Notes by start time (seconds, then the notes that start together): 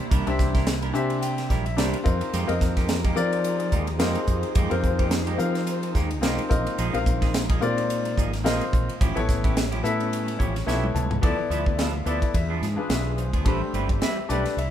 Already playing: C3 A#3 E4
0.11 C2 G3 C4 D4 E4 A#4, kick, hi-hat pedal, ride
0.27 C2 D4 G4 C5 E5, ride
0.39 muted clean electric guitar stroke, kick, snare, hi-hat pedal
0.55 D4 E4 A#4, kick, snare, ride
0.67 muted clean electric guitar stroke, snare, hi-hat pedal, ride
0.82 G3 D4 E4 A#4, ride
0.93 C3 D4 G4 C5 E5 G#5, muted clean electric guitar stroke, hi-hat pedal
1.10 muted clean electric guitar stroke, ride
1.21 G5, hi-hat pedal, ride
1.38 muted clean electric guitar stroke, snare, ride
1.50 A#1 G3 D4 E4 A#4, kick, snare, hi-hat pedal
1.65 E5, muted clean electric guitar stroke, ride
1.77 C2 G3 D4 E4 G4 A#4 C5 D5, snare, hi-hat pedal, ride
1.94 ride
2.03 F2 F3 C4 D#4 F4 G4 G#4 A#4 D#5, muted clean electric guitar stroke, kick, hi-hat pedal
2.21 muted clean electric guitar stroke, ride
2.33 F2 G#3 A#3 D#4 G4, hi-hat pedal, ride
2.47 F2 C4 F4 A#4 D#5, ride
2.61 muted clean electric guitar stroke, kick, snare, hi-hat pedal
2.77 A#3 D#4 G4, kick, snare, ride
2.89 snare, hi-hat pedal, ride
3.04 G#3 A#3 D#4 G4, kick, ride
3.15 F3 C4 F4 A#4 D5, muted clean electric guitar stroke, hi-hat pedal
3.32 muted clean electric guitar stroke, ride
3.44 hi-hat pedal, ride
3.60 muted clean electric guitar stroke, ride
3.72 D#2 G#3 A#3 D#4 G4, kick, hi-hat pedal
3.87 muted clean electric guitar stroke, ride
3.99 F2 G#3 A#3 C4 D#4 F4 G4 A#4 D#5, snare, hi-hat pedal, ride
4.15 ride
4.27 F2 C5, muted clean electric guitar stroke, kick, hi-hat pedal
4.43 muted clean electric guitar stroke, ride
4.55 F2 G#3 A#3 D#4 G4, kick, hi-hat pedal, ride
4.70 F2 C4 F4 A#4 C5, ride
4.84 muted clean electric guitar stroke, kick, hi-hat pedal
4.99 A#3 D#4 G4, kick, ride
5.11 muted clean electric guitar stroke, snare, hi-hat pedal, ride
5.27 G#3 A#3 D#4 G4, ride
5.38 F3 C4 F4 A#4 F5, hi-hat pedal
5.54 muted clean electric guitar stroke, snare, ride
5.67 hi-hat pedal, ride
5.83 muted clean electric guitar stroke, ride
5.95 D#2 G#3 A#3 D#4 G4, kick, snare, hi-hat pedal
6.11 muted clean electric guitar stroke, ride
6.21 B1 G#3 A#3 C4 D#4 F4 G4 A#4 D#5, snare, hi-hat pedal, ride
6.38 ride
6.49 A#1 G#3 A#3 C4 F4 A#4 D#5, muted clean electric guitar stroke, kick, hi-hat pedal
6.67 muted clean electric guitar stroke, ride
6.78 A#1 F3 A#3 D#4 G#4, hi-hat pedal, ride
6.93 A#1 C4 F4 A#4 F5, ride
7.06 muted clean electric guitar stroke, kick, hi-hat pedal
7.22 A#3 D#4 G#4, kick, snare, ride
7.34 muted clean electric guitar stroke, snare, hi-hat pedal, ride
7.49 F3 A#3 D#4 G#4, kick, ride
7.61 A#2 C4 F4 A#4 D5, muted clean electric guitar stroke, hi-hat pedal
7.78 muted clean electric guitar stroke, ride
7.90 hi-hat pedal, ride
8.05 muted clean electric guitar stroke, ride
8.17 G#1 F3 A#3 D#4 G#4, kick, hi-hat pedal
8.33 muted clean electric guitar stroke, snare, ride
8.44 A#1 F3 A#3 C4 D#4 F4 G#4 A#4 D#5, snare, hi-hat pedal, ride
8.61 ride
8.73 A#1, muted clean electric guitar stroke, kick, hi-hat pedal
8.89 muted clean electric guitar stroke, ride
9.01 A1 F3 G3 A3 C#4 E4 G4, kick, hi-hat pedal, ride
9.15 A1 B3 E4 A4 C#5, ride
9.29 muted clean electric guitar stroke, kick, snare, hi-hat pedal
9.44 C#4 E4 G4, kick, ride
9.56 muted clean electric guitar stroke, snare, hi-hat pedal, ride
9.72 F3 C#4 E4 G4, ride
9.83 A2 B3 E4 A4 E5, muted clean electric guitar stroke, hi-hat pedal
9.99 muted clean electric guitar stroke, ride
10.13 hi-hat pedal, ride
10.27 muted clean electric guitar stroke, ride
10.39 A1 F3 C#4 E4 G4 C#5, kick, hi-hat pedal
10.55 muted clean electric guitar stroke, snare, ride
10.66 B1 F3 B3 C#4 E4 G4 A4 C#5 E5, snare, hi-hat pedal
10.83 high tom
10.95 C#2 A5, muted clean electric guitar stroke, hi-hat pedal, mid tom
11.11 muted clean electric guitar stroke, floor tom
11.21 D2 D3 F3 B3 E4 A4 D5, kick, ride
11.38 muted clean electric guitar stroke
11.50 D2 F3 B3 E4 A4, hi-hat pedal, ride
11.66 muted clean electric guitar stroke, kick
11.79 F3 B3 E4 A4 F5, snare, ride
11.94 muted clean electric guitar stroke
12.05 D2 F3 B3 E4 A4 D5 E5, hi-hat pedal, ride
12.22 muted clean electric guitar stroke, kick, ride
12.34 E2 E3 D4 F4 G#4 E5, muted clean electric guitar stroke, kick, ride
12.50 F3 B3 D4 G#4
12.61 G#2, snare, hi-hat pedal, ride
12.76 D4 F4 G#4 B4, muted fretless electric bass stroke, muted clean electric guitar stroke
12.89 B1 E5, snare, ride
13.06 muted clean electric guitar stroke
13.18 C5, muted clean electric guitar stroke, hi-hat pedal, ride
13.33 D2 B3 D4 G#4, kick, ride
13.45 A1 G3 A3 C4 D4 E4 G4 B4 C5, kick, ride
13.62 muted clean electric guitar stroke
13.73 G1 G3 C4 E4 B4, hi-hat pedal, ride
13.89 muted clean electric guitar stroke, kick, ride
14.02 G3 C4 E4 B4 E5, snare, ride
14.19 muted clean electric guitar stroke
14.29 B1 G3 A3 C4 D4 E4 G4 B4 D5, hi-hat pedal, ride
14.45 muted clean electric guitar stroke, snare, ride
14.56 C2 C3 B3 D4 E4 E5, muted clean electric guitar stroke, ride